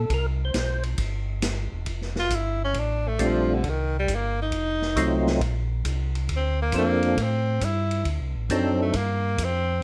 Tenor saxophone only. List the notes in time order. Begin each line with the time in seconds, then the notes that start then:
2.19 F4
2.35 E4
2.64 C#4
2.79 D4
3.08 A3
3.26 F3
3.54 D3
3.69 D#3
3.99 G3
4.15 A#3
4.42 D#4
6.36 C4
6.62 A#3
6.78 A#3
7.22 C4
7.65 E4
8.54 C4
8.82 A3
8.97 A#3
9.44 C4